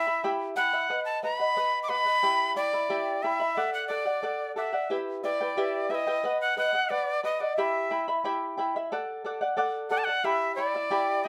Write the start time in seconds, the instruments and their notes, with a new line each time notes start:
Already playing: quena E5
0.07 charango E4 E5 B5
0.24 charango E4 G4 E5 G5 B5
0.56 charango E4 E5 G5 B5, quena F#5
0.73 charango E4 E5 B5
0.90 charango B4 D#5 F#5
1.05 quena A5
1.23 charango B4 D#5 F#5, quena B5
1.40 charango D#5 F#5
1.56 charango B4 D#5 F#5
1.83 quena D6
1.89 charango B4 D#5 F#5, quena B5
2.05 charango D#5 F#5
2.23 charango E4 G4 E5 G5 B5
2.56 charango E4 E5 G5 B5, quena D5
2.73 charango E4 E5 B5
2.90 charango E4 G4 E5 G5 B5
3.23 charango E4 E5 G5 B5, quena E5
3.40 charango E4 E5 B5
3.57 charango A4 D5 F#5
3.74 quena F#5
3.88 charango A4 D5 F#5, quena D5
4.06 charango D5 F#5
4.23 charango A4 D5 F#5
4.56 charango A4 D5 F#5, quena E5
4.73 charango D5 F#5
4.90 charango E4 G4 B4 E5 G5
5.23 charango E4 B4 E5 G5, quena D5
5.40 charango E4 B4 G5
5.57 charango E4 G4 B4 E5 G5
5.90 charango E4 B4 E5 G5, quena E5
5.95 quena D#5
6.07 charango E4 B4 G5
6.24 charango B4 D#5 F#5
6.41 quena F#5
6.57 charango B4 D#5 F#5, quena F#5
6.73 charango D#5 F#5
6.90 charango B4 F#5, quena D5
7.23 charango B4 D#5 F#5, quena D#5
7.40 quena D5, charango D#5 F#5
7.57 charango E4 G4 E5 G5 B5, quena E5
7.91 charango E4 E5 G5 B5
8.08 charango E4 E5 B5
8.24 charango E4 G4 E5 G5 B5
8.57 charango E4 E5 G5 B5
8.76 charango E4 E5 B5
8.92 charango A4 D5 F#5
9.25 charango A4 D5 F#5
9.41 charango D5 F#5
9.57 charango A4 D5 F#5
9.90 charango A4 D5 F#5, quena F#5
9.98 quena A5
10.04 quena F#5, charango F#5
10.09 charango D5
10.24 charango E4 G4 E5 G5 B5, quena E5
10.56 charango E4 E5 G5 B5, quena D5
10.74 charango E4 E5 B5
10.91 charango E4 G4 E5 G5 B5
11.24 quena D#5, charango G5